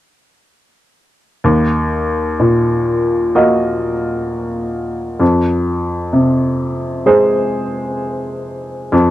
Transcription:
1.44 D#2
2.40 A#2
3.35 A#3 F#4 D#5
5.20 F2
6.13 C3
7.06 G#3 G#4 C5
8.92 F2

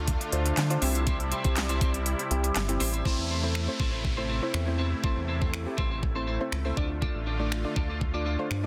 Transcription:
Already playing: D2 D3 A3 C4 D4 F4 A4
0.07 A3, muted clean electric guitar stroke, kick, closed hi-hat
0.21 D4, muted clean electric guitar stroke, closed hi-hat
0.32 D2 D4 F4 C5, closed hi-hat
0.45 A4, muted clean electric guitar stroke, closed hi-hat
0.57 D3 A3, muted clean electric guitar stroke, snare, clap, closed hi-hat
0.70 D4 F4 C5, muted clean electric guitar stroke, closed hi-hat
0.82 C2 C3 G3 C4 E4 G4 C5, open hi-hat
0.95 C4 E4 G4 C5, closed hi-hat
1.06 G3 C4 E4 G4 C5, kick, closed hi-hat
1.20 C4, muted clean electric guitar stroke, closed hi-hat
1.31 C4 E4 G4 C5, closed hi-hat
1.44 C2 C4 E4 G4 C5, kick, closed hi-hat
1.56 G3, muted clean electric guitar stroke, snare, clap, closed hi-hat
1.69 C4 E4 G4 C5, closed hi-hat
1.81 C4 E4 G4 C5, kick, closed hi-hat
1.94 G4, muted clean electric guitar stroke, closed hi-hat
2.06 G3, muted clean electric guitar stroke, closed hi-hat
2.19 C4, muted clean electric guitar stroke, closed hi-hat
2.31 C2 C4 E4 G4, closed hi-hat
2.44 G4, muted clean electric guitar stroke, closed hi-hat
2.55 G1 G3, muted clean electric guitar stroke, snare, clap, closed hi-hat
2.69 C4 E4 G4, muted clean electric guitar stroke, closed hi-hat
2.80 A1 C4 E4 G4 C5, open hi-hat
2.93 C4 E4 G4 C5, closed hi-hat
3.05 A1 C3 A3 C4 E4 A4 C5, kick, downlifter
3.18 E2
3.30 C4 E4 A4 C5
3.43 A3 C4 E4 A4 C5
3.55 finger snap
3.68 A3 C4 E4 C5, muted clean electric guitar stroke
3.79 A1 C4 E4 A4 C5, kick
3.92 C4 E4 A4 C5
4.04 muted clean electric guitar stroke, kick
4.17 A3 C4 E4 A4 C5
4.29 C4 E4 A4 C5
4.42 A3 C4 E4 C5, muted clean electric guitar stroke
4.54 E2, finger snap
4.67 A3 C4 E4 C5, muted clean electric guitar stroke
4.78 C4 E4 A4 C5
4.92 muted clean electric guitar stroke
5.03 A1 A3 C4 E4 A4 C5, kick
5.17 E2
5.28 C4 E4 A4 C5
5.41 A3 C4 E4 A4 C5, kick
5.53 finger snap, muted clean electric guitar stroke
5.66 A3 C4 E4 G4, muted clean electric guitar stroke
5.77 A1 C4 E4 A4 C5, kick
5.91 C4 E4 A4 C5
6.02 muted clean electric guitar stroke, kick
6.15 A3 C4 E4 A4 C5
6.27 C4 E4 A4 C5
6.40 A3 C4 E4 C5, muted clean electric guitar stroke
6.52 C#2, finger snap, muted clean electric guitar stroke
6.65 A3 C4 E4 A4 C5
6.77 D2 D3 A3 D4 F4 A4 D5, kick
6.90 muted clean electric guitar stroke
7.02 D4 F4 A4 D5, kick
7.15 A1
7.26 D4 F4 A4 D5
7.39 A3 D4 F4 A4 D5
7.51 finger snap, muted clean electric guitar stroke
7.64 A3 D4 F4 D5, muted clean electric guitar stroke
7.76 D2 D4 F4 A4 D5, kick
7.89 D4 F4 A4 D5
8.01 muted clean electric guitar stroke, kick
8.14 A3 D4 F4 A4 D5
8.25 D4 F4 A4 D5
8.39 A3 D4 F4 C5, muted clean electric guitar stroke
8.51 G2, finger snap
8.63 A3 D4, muted clean electric guitar stroke

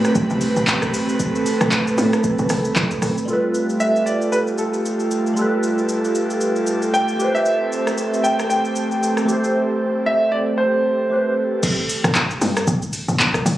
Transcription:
Already playing: A2 A3 C4 G4 B4
0.04 cross-stick, shaker
0.15 A1, kick, shaker
0.30 C2, shaker
0.41 open hi-hat, shaker
0.56 A1, shaker
0.67 kick, clap, shaker
0.82 kick, cross-stick, shaker
0.94 C2 A4, open hi-hat, shaker
1.09 shaker
1.19 kick, shaker
1.35 shaker
1.46 open hi-hat, shaker
1.61 A1, cross-stick, shaker
1.72 kick, clap, shaker
1.87 shaker
1.98 A2, open hi-hat, shaker
2.13 cross-stick, shaker
2.24 kick, shaker
2.38 A1, shaker
2.49 C2, cross-stick, open hi-hat, shaker
2.65 shaker
2.76 A1, kick, clap, shaker
2.91 kick, shaker
3.02 A1, cross-stick, open hi-hat, shaker
3.17 shaker
3.25 G3 A3 F4 G4 A4, shaker
3.30 A4 B4
3.54 shaker
3.69 shaker
3.80 E5, shaker
3.96 shaker
4.06 D5, shaker
4.22 shaker
4.32 B4, shaker
4.47 shaker
4.58 A4, shaker
4.74 shaker
4.85 shaker
5.00 shaker
5.11 shaker
5.26 shaker
5.34 G3 F4, shaker
5.39 A4 B4
5.63 shaker
5.78 shaker
5.89 shaker
6.04 shaker
6.15 shaker
6.30 shaker
6.41 shaker
6.56 shaker
6.67 shaker
6.82 shaker
6.94 G5, shaker
7.08 shaker
7.16 A3 C4 G4, shaker
7.22 B4 C5
7.35 E5, shaker
7.46 shaker
7.72 shaker
7.87 cross-stick, shaker
7.98 shaker
8.14 shaker
8.24 G5, shaker
8.39 cross-stick, shaker
8.50 G5, shaker
8.65 shaker
8.76 shaker
8.91 shaker
9.03 shaker
9.17 cross-stick, shaker
9.25 A3 G4, shaker
9.30 A4 C5
9.44 shaker
10.06 E5
10.32 D5
10.58 C5
11.10 A3 G4 B4 C5
11.63 kick, crash, shaker
11.89 open hi-hat, shaker
12.04 G1, cross-stick, shaker
12.15 kick, clap, shaker
12.31 shaker
12.41 G2, open hi-hat, shaker
12.56 cross-stick, shaker
12.67 G1, kick, shaker
12.82 A1, shaker
12.93 open hi-hat, shaker
13.08 G1, shaker
13.20 kick, clap, shaker
13.34 kick, cross-stick, shaker
13.46 B1, open hi-hat, shaker

